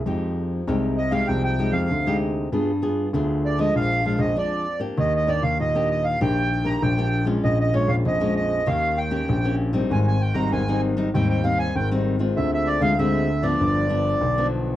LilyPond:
<<
  \new Staff \with { instrumentName = "Accordion" } { \time 4/4 \key f \dorian \tempo 4 = 98 r4. ees''16 f''16 g''16 g''8 f''8. r8 | r4. d''16 ees''16 f''8 f''16 ees''16 d''8. r16 | \key ees \major ees''16 ees''16 d''16 f''16 ees''8 ees''16 f''16 g''8. bes''16 g''8. r16 | ees''16 ees''16 des''16 f''16 ees''8 ees''8 f''8 g''4 r8 |
aes''16 aes''16 g''16 bes''16 aes''8 r8 g''16 g''16 f''16 aes''16 g''8 r8 | fes''16 fes''16 d''16 f''16 fes''8. d''4.~ d''16 r8 | }
  \new Staff \with { instrumentName = "Nylon-string guitar" } { \time 4/4 \key f \dorian << { <aes ees' g'>4 <aes ees' g'>8 r16 <aes ees' g'>8. <aes ees' g'>8 r16 <aes ees' g'>8. | <b f' aes'>16 r16 <b f' aes'>8 <b f' aes'>8. <f aes d'>8. <f aes d'>8 <f aes d'>8 r16 <bes d' g'>16~ | \key ees \major <bes d' g'>8 <bes d' g'>8 r16 <bes d' g'>8. <bes d' g'>8 r16 <bes d' g'>8 <bes d' g'>8 <aes des' f'>16~ | <aes des' f'>8 <aes des' f'>8. <aes des' f'>8. <bes des' g'>8 r16 <bes des' g'>8 <bes des' g'>8 <g c' ees'>16~ |
<g c' ees'>8 r16 <g c' ees'>8 <g c' ees'>8 <g c' ees'>16 <g c' ees'>8 <g c' ees'>8 r16 <g c' ees'>8 <aes c' f'>16~ | <aes c' f'>8. <aes c' f'>16 <aes c' f'>8 r16 <f ces' d'>8. <f b d'>8 r16 <f b d'>8. | } \\ { f4 c4 f4 c4 | g4 d4 bes,4 f,4 | ees4 bes,4 ees4 bes,4 | bes,4 f,4 ees4 bes,4 |
aes,4 ees4 aes,4 ees4 | d4 d4 g,4 d4 | } >> }
  \new Staff \with { instrumentName = "Grand piano" } { \clef bass \time 4/4 \key f \dorian f,4 c,4 c,8. f,16 d,4 | g,4 d,4 bes,,8. bes,,16 r4 | \key ees \major ees,8. ees,16 ees,4 bes,,4 bes,,4 | bes,,8. bes,,16 bes,,4 ees,4 bes,,4 |
aes,,8. aes,,16 aes,,4 ees,4 aes,,4 | d,8. d,16 d,4 g,,4 b,,4 | }
>>